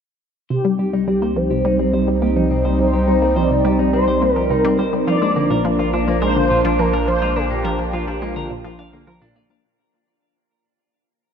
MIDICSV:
0, 0, Header, 1, 6, 480
1, 0, Start_track
1, 0, Key_signature, -3, "minor"
1, 0, Tempo, 571429
1, 423, Time_signature, 4, 2, 24, 8
1, 9521, End_track
2, 0, Start_track
2, 0, Title_t, "Analog synth lead"
2, 0, Program_c, 0, 81
2, 423, Note_on_c, 0, 67, 106
2, 899, Note_off_c, 0, 67, 0
2, 904, Note_on_c, 0, 67, 92
2, 1141, Note_on_c, 0, 72, 105
2, 1154, Note_off_c, 0, 67, 0
2, 2102, Note_off_c, 0, 72, 0
2, 2343, Note_on_c, 0, 72, 104
2, 2822, Note_on_c, 0, 74, 112
2, 2835, Note_off_c, 0, 72, 0
2, 3299, Note_off_c, 0, 74, 0
2, 3304, Note_on_c, 0, 72, 105
2, 3648, Note_off_c, 0, 72, 0
2, 3648, Note_on_c, 0, 70, 105
2, 3782, Note_off_c, 0, 70, 0
2, 3782, Note_on_c, 0, 70, 91
2, 4143, Note_off_c, 0, 70, 0
2, 4262, Note_on_c, 0, 74, 100
2, 4949, Note_off_c, 0, 74, 0
2, 5222, Note_on_c, 0, 72, 119
2, 5703, Note_on_c, 0, 70, 100
2, 5715, Note_off_c, 0, 72, 0
2, 5936, Note_off_c, 0, 70, 0
2, 5941, Note_on_c, 0, 72, 104
2, 6183, Note_on_c, 0, 67, 107
2, 6196, Note_off_c, 0, 72, 0
2, 6904, Note_on_c, 0, 65, 90
2, 6916, Note_off_c, 0, 67, 0
2, 7864, Note_off_c, 0, 65, 0
2, 9521, End_track
3, 0, Start_track
3, 0, Title_t, "Clean electric guitar"
3, 0, Program_c, 1, 27
3, 423, Note_on_c, 1, 72, 75
3, 537, Note_off_c, 1, 72, 0
3, 664, Note_on_c, 1, 67, 65
3, 768, Note_off_c, 1, 67, 0
3, 783, Note_on_c, 1, 63, 68
3, 898, Note_off_c, 1, 63, 0
3, 905, Note_on_c, 1, 60, 74
3, 1008, Note_off_c, 1, 60, 0
3, 1025, Note_on_c, 1, 72, 66
3, 1138, Note_off_c, 1, 72, 0
3, 1264, Note_on_c, 1, 67, 68
3, 1368, Note_off_c, 1, 67, 0
3, 1385, Note_on_c, 1, 63, 74
3, 1499, Note_off_c, 1, 63, 0
3, 1505, Note_on_c, 1, 60, 65
3, 1608, Note_off_c, 1, 60, 0
3, 1625, Note_on_c, 1, 72, 66
3, 1738, Note_off_c, 1, 72, 0
3, 1865, Note_on_c, 1, 67, 74
3, 1968, Note_off_c, 1, 67, 0
3, 1984, Note_on_c, 1, 63, 70
3, 2098, Note_off_c, 1, 63, 0
3, 2105, Note_on_c, 1, 60, 71
3, 2208, Note_off_c, 1, 60, 0
3, 2225, Note_on_c, 1, 72, 69
3, 2338, Note_off_c, 1, 72, 0
3, 2464, Note_on_c, 1, 67, 65
3, 2568, Note_off_c, 1, 67, 0
3, 2585, Note_on_c, 1, 63, 66
3, 2698, Note_off_c, 1, 63, 0
3, 2705, Note_on_c, 1, 60, 67
3, 2808, Note_off_c, 1, 60, 0
3, 2824, Note_on_c, 1, 72, 76
3, 2938, Note_off_c, 1, 72, 0
3, 3065, Note_on_c, 1, 67, 70
3, 3168, Note_off_c, 1, 67, 0
3, 3185, Note_on_c, 1, 63, 65
3, 3298, Note_off_c, 1, 63, 0
3, 3305, Note_on_c, 1, 60, 76
3, 3408, Note_off_c, 1, 60, 0
3, 3425, Note_on_c, 1, 72, 74
3, 3538, Note_off_c, 1, 72, 0
3, 3664, Note_on_c, 1, 67, 71
3, 3768, Note_off_c, 1, 67, 0
3, 3784, Note_on_c, 1, 63, 73
3, 3898, Note_off_c, 1, 63, 0
3, 3904, Note_on_c, 1, 60, 68
3, 4008, Note_off_c, 1, 60, 0
3, 4024, Note_on_c, 1, 72, 67
3, 4138, Note_off_c, 1, 72, 0
3, 4264, Note_on_c, 1, 65, 78
3, 4368, Note_off_c, 1, 65, 0
3, 4385, Note_on_c, 1, 62, 68
3, 4498, Note_off_c, 1, 62, 0
3, 4504, Note_on_c, 1, 58, 69
3, 4608, Note_off_c, 1, 58, 0
3, 4625, Note_on_c, 1, 70, 70
3, 4738, Note_off_c, 1, 70, 0
3, 4865, Note_on_c, 1, 65, 73
3, 4968, Note_off_c, 1, 65, 0
3, 4984, Note_on_c, 1, 62, 74
3, 5098, Note_off_c, 1, 62, 0
3, 5104, Note_on_c, 1, 58, 71
3, 5208, Note_off_c, 1, 58, 0
3, 5222, Note_on_c, 1, 70, 77
3, 5337, Note_off_c, 1, 70, 0
3, 5462, Note_on_c, 1, 65, 71
3, 5567, Note_off_c, 1, 65, 0
3, 5582, Note_on_c, 1, 62, 72
3, 5697, Note_off_c, 1, 62, 0
3, 5702, Note_on_c, 1, 58, 79
3, 5807, Note_off_c, 1, 58, 0
3, 5824, Note_on_c, 1, 70, 74
3, 5938, Note_off_c, 1, 70, 0
3, 6063, Note_on_c, 1, 65, 71
3, 6167, Note_off_c, 1, 65, 0
3, 6183, Note_on_c, 1, 62, 83
3, 6297, Note_off_c, 1, 62, 0
3, 6304, Note_on_c, 1, 58, 71
3, 6408, Note_off_c, 1, 58, 0
3, 6424, Note_on_c, 1, 70, 70
3, 6538, Note_off_c, 1, 70, 0
3, 6664, Note_on_c, 1, 65, 78
3, 6767, Note_off_c, 1, 65, 0
3, 6782, Note_on_c, 1, 62, 70
3, 6897, Note_off_c, 1, 62, 0
3, 6903, Note_on_c, 1, 58, 73
3, 7007, Note_off_c, 1, 58, 0
3, 7024, Note_on_c, 1, 70, 69
3, 7138, Note_off_c, 1, 70, 0
3, 7263, Note_on_c, 1, 65, 75
3, 7367, Note_off_c, 1, 65, 0
3, 7383, Note_on_c, 1, 77, 73
3, 7487, Note_off_c, 1, 77, 0
3, 7504, Note_on_c, 1, 58, 77
3, 7618, Note_off_c, 1, 58, 0
3, 7622, Note_on_c, 1, 70, 83
3, 7737, Note_off_c, 1, 70, 0
3, 7742, Note_on_c, 1, 62, 98
3, 7857, Note_off_c, 1, 62, 0
3, 7862, Note_on_c, 1, 74, 72
3, 7925, Note_off_c, 1, 74, 0
3, 7982, Note_on_c, 1, 62, 69
3, 8097, Note_off_c, 1, 62, 0
3, 9521, End_track
4, 0, Start_track
4, 0, Title_t, "Analog synth pad"
4, 0, Program_c, 2, 89
4, 425, Note_on_c, 2, 55, 79
4, 425, Note_on_c, 2, 63, 89
4, 426, Note_on_c, 2, 60, 74
4, 4231, Note_off_c, 2, 55, 0
4, 4231, Note_off_c, 2, 60, 0
4, 4231, Note_off_c, 2, 63, 0
4, 4261, Note_on_c, 2, 53, 84
4, 4262, Note_on_c, 2, 58, 75
4, 4262, Note_on_c, 2, 62, 94
4, 8069, Note_off_c, 2, 53, 0
4, 8069, Note_off_c, 2, 58, 0
4, 8069, Note_off_c, 2, 62, 0
4, 9521, End_track
5, 0, Start_track
5, 0, Title_t, "Synth arpeggio sound"
5, 0, Program_c, 3, 84
5, 423, Note_on_c, 3, 48, 72
5, 508, Note_off_c, 3, 48, 0
5, 543, Note_on_c, 3, 55, 95
5, 628, Note_off_c, 3, 55, 0
5, 664, Note_on_c, 3, 55, 70
5, 714, Note_off_c, 3, 55, 0
5, 784, Note_on_c, 3, 55, 72
5, 868, Note_off_c, 3, 55, 0
5, 904, Note_on_c, 3, 55, 74
5, 954, Note_off_c, 3, 55, 0
5, 1025, Note_on_c, 3, 58, 71
5, 1109, Note_off_c, 3, 58, 0
5, 1145, Note_on_c, 3, 53, 76
5, 1195, Note_off_c, 3, 53, 0
5, 1264, Note_on_c, 3, 48, 72
5, 1348, Note_off_c, 3, 48, 0
5, 1385, Note_on_c, 3, 55, 91
5, 1468, Note_off_c, 3, 55, 0
5, 1505, Note_on_c, 3, 55, 74
5, 1555, Note_off_c, 3, 55, 0
5, 1625, Note_on_c, 3, 55, 73
5, 1709, Note_off_c, 3, 55, 0
5, 1745, Note_on_c, 3, 55, 69
5, 1795, Note_off_c, 3, 55, 0
5, 1865, Note_on_c, 3, 58, 82
5, 1948, Note_off_c, 3, 58, 0
5, 1986, Note_on_c, 3, 53, 75
5, 2035, Note_off_c, 3, 53, 0
5, 2104, Note_on_c, 3, 48, 75
5, 2188, Note_off_c, 3, 48, 0
5, 2225, Note_on_c, 3, 55, 91
5, 2308, Note_off_c, 3, 55, 0
5, 2344, Note_on_c, 3, 55, 78
5, 2394, Note_off_c, 3, 55, 0
5, 2465, Note_on_c, 3, 55, 74
5, 2548, Note_off_c, 3, 55, 0
5, 2585, Note_on_c, 3, 55, 72
5, 2635, Note_off_c, 3, 55, 0
5, 2704, Note_on_c, 3, 58, 68
5, 2788, Note_off_c, 3, 58, 0
5, 2823, Note_on_c, 3, 53, 77
5, 2874, Note_off_c, 3, 53, 0
5, 2944, Note_on_c, 3, 48, 73
5, 3028, Note_off_c, 3, 48, 0
5, 3064, Note_on_c, 3, 55, 100
5, 3148, Note_off_c, 3, 55, 0
5, 3184, Note_on_c, 3, 55, 73
5, 3234, Note_off_c, 3, 55, 0
5, 3303, Note_on_c, 3, 55, 78
5, 3387, Note_off_c, 3, 55, 0
5, 3423, Note_on_c, 3, 55, 71
5, 3474, Note_off_c, 3, 55, 0
5, 3542, Note_on_c, 3, 58, 73
5, 3627, Note_off_c, 3, 58, 0
5, 3663, Note_on_c, 3, 53, 75
5, 3714, Note_off_c, 3, 53, 0
5, 3783, Note_on_c, 3, 48, 79
5, 3868, Note_off_c, 3, 48, 0
5, 3903, Note_on_c, 3, 55, 104
5, 3987, Note_off_c, 3, 55, 0
5, 4022, Note_on_c, 3, 55, 76
5, 4073, Note_off_c, 3, 55, 0
5, 4141, Note_on_c, 3, 55, 70
5, 4227, Note_off_c, 3, 55, 0
5, 4262, Note_on_c, 3, 53, 79
5, 4313, Note_off_c, 3, 53, 0
5, 4382, Note_on_c, 3, 56, 77
5, 4467, Note_off_c, 3, 56, 0
5, 4504, Note_on_c, 3, 50, 76
5, 4554, Note_off_c, 3, 50, 0
5, 4623, Note_on_c, 3, 46, 74
5, 4707, Note_off_c, 3, 46, 0
5, 4744, Note_on_c, 3, 53, 95
5, 4828, Note_off_c, 3, 53, 0
5, 4864, Note_on_c, 3, 53, 73
5, 4914, Note_off_c, 3, 53, 0
5, 4985, Note_on_c, 3, 53, 78
5, 5068, Note_off_c, 3, 53, 0
5, 5104, Note_on_c, 3, 53, 74
5, 5154, Note_off_c, 3, 53, 0
5, 5224, Note_on_c, 3, 56, 78
5, 5308, Note_off_c, 3, 56, 0
5, 5344, Note_on_c, 3, 50, 74
5, 5395, Note_off_c, 3, 50, 0
5, 5464, Note_on_c, 3, 46, 77
5, 5548, Note_off_c, 3, 46, 0
5, 5584, Note_on_c, 3, 53, 98
5, 5668, Note_off_c, 3, 53, 0
5, 5705, Note_on_c, 3, 53, 80
5, 5755, Note_off_c, 3, 53, 0
5, 5825, Note_on_c, 3, 53, 76
5, 5909, Note_off_c, 3, 53, 0
5, 5945, Note_on_c, 3, 53, 75
5, 5995, Note_off_c, 3, 53, 0
5, 6064, Note_on_c, 3, 56, 70
5, 6148, Note_off_c, 3, 56, 0
5, 6184, Note_on_c, 3, 50, 74
5, 6234, Note_off_c, 3, 50, 0
5, 6304, Note_on_c, 3, 46, 75
5, 6388, Note_off_c, 3, 46, 0
5, 6423, Note_on_c, 3, 53, 100
5, 6508, Note_off_c, 3, 53, 0
5, 6543, Note_on_c, 3, 53, 77
5, 6594, Note_off_c, 3, 53, 0
5, 6664, Note_on_c, 3, 53, 81
5, 6748, Note_off_c, 3, 53, 0
5, 6783, Note_on_c, 3, 53, 73
5, 6834, Note_off_c, 3, 53, 0
5, 6904, Note_on_c, 3, 56, 78
5, 6988, Note_off_c, 3, 56, 0
5, 7024, Note_on_c, 3, 50, 74
5, 7074, Note_off_c, 3, 50, 0
5, 7143, Note_on_c, 3, 46, 79
5, 7228, Note_off_c, 3, 46, 0
5, 7261, Note_on_c, 3, 53, 101
5, 7347, Note_off_c, 3, 53, 0
5, 7382, Note_on_c, 3, 62, 76
5, 7497, Note_off_c, 3, 62, 0
5, 7501, Note_on_c, 3, 50, 75
5, 7586, Note_off_c, 3, 50, 0
5, 7621, Note_on_c, 3, 53, 102
5, 7707, Note_off_c, 3, 53, 0
5, 7742, Note_on_c, 3, 46, 100
5, 7827, Note_off_c, 3, 46, 0
5, 7862, Note_on_c, 3, 58, 75
5, 7947, Note_off_c, 3, 58, 0
5, 7981, Note_on_c, 3, 58, 72
5, 8066, Note_off_c, 3, 58, 0
5, 9521, End_track
6, 0, Start_track
6, 0, Title_t, "Analog synth bass"
6, 0, Program_c, 4, 38
6, 423, Note_on_c, 4, 36, 86
6, 4239, Note_off_c, 4, 36, 0
6, 4263, Note_on_c, 4, 34, 85
6, 8079, Note_off_c, 4, 34, 0
6, 9521, End_track
0, 0, End_of_file